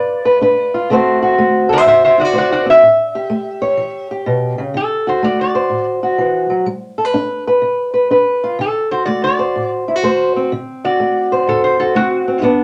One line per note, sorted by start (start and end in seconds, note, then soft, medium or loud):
0.00 0.39 D3 medium
0.00 0.73 F4 medium
0.00 0.24 B4 medium
0.00 1.18 D5 medium
0.25 0.41 B4 medium
0.41 0.86 D4 medium
0.41 0.88 B4 medium
0.74 0.88 F4 medium
0.90 1.35 D3 medium
0.90 1.38 A3 medium
0.90 2.65 C4 medium
0.90 1.21 F#4 medium
0.90 1.69 C5 medium
1.22 2.17 F#4 medium
1.38 1.83 A3 medium
1.69 1.78 A4 medium
1.69 1.86 C5 loud
1.73 1.87 E5 loud
1.78 2.33 C5 medium
1.85 2.30 A2 medium
1.85 2.02 C5 medium
1.85 2.02 E5 medium
2.04 2.18 C5 medium
2.04 2.19 E5 medium
2.18 2.25 E4 medium
2.18 2.35 F#4 medium
2.18 2.35 D5 loud
2.25 2.81 F#4 medium
2.33 2.78 A3 medium
2.33 2.80 C5 medium
2.38 2.51 F#4 medium
2.38 2.52 D5 medium
2.52 2.66 F#4 medium
2.52 2.67 D5 medium
2.66 2.82 C4 medium
2.70 4.08 E5 loud
2.82 3.27 A2 medium
3.15 4.10 G4 medium
3.30 3.75 A3 medium
3.62 4.72 C#5 medium
3.77 4.22 E3 medium
4.11 4.73 G4 medium
4.26 4.58 B2 medium
4.58 4.74 C#3 medium
4.74 5.19 D3 medium
4.74 5.06 A4 medium
5.07 6.02 F#4 medium
5.07 5.23 C5 medium
5.23 5.67 A3 medium
5.23 5.39 D5 medium
5.41 5.86 D5 medium
5.55 6.65 C5 medium
5.70 6.15 A2 medium
6.03 6.65 F#4 medium
6.18 6.50 E3 medium
6.50 6.66 F#3 medium
6.66 7.11 G3 medium
6.98 7.05 A4 medium
7.05 7.45 B4 medium
7.14 7.59 D4 medium
7.47 7.93 B4 medium
7.62 8.07 D3 medium
7.94 8.10 B4 medium
8.11 8.55 D4 medium
8.11 8.57 B4 medium
8.44 8.57 F4 medium
8.59 9.04 D3 medium
8.59 8.91 A4 medium
8.91 9.87 F#4 medium
8.91 9.05 C5 medium
9.05 9.52 A3 medium
9.05 9.22 D5 medium
9.24 9.70 D5 medium
9.39 10.03 C5 medium
9.56 10.00 A2 medium
9.88 9.96 E4 medium
9.96 10.51 F#4 medium
10.03 10.48 A3 medium
10.03 10.50 C5 medium
10.36 11.95 C4 medium
10.52 10.96 D3 medium
10.84 11.79 F#4 medium
10.84 11.46 D5 medium
11.00 11.44 A3 medium
11.32 12.42 C5 medium
11.47 11.92 A2 medium
11.47 11.63 A4 medium
11.64 11.79 C5 medium
11.80 12.42 F#4 medium
11.80 11.95 A4 medium
11.95 12.40 A3 medium
11.95 12.27 C4 medium
11.95 12.42 F#4 medium
12.28 12.43 C4 soft
12.42 12.64 G3 medium
12.42 12.64 B3 medium
12.42 12.64 D4 medium